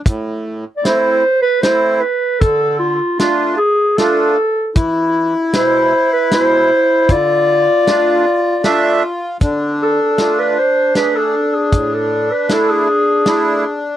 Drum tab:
HH |x-x-x-|x-x-x-|x-x-x-|x-x-x-|
SD |--o-o-|--o-o-|--o-o-|--o-o-|
BD |o-----|o-----|o-----|o-----|

HH |x-x-x-|x-x-x-|
SD |--o-o-|--o-o-|
BD |o-----|o-----|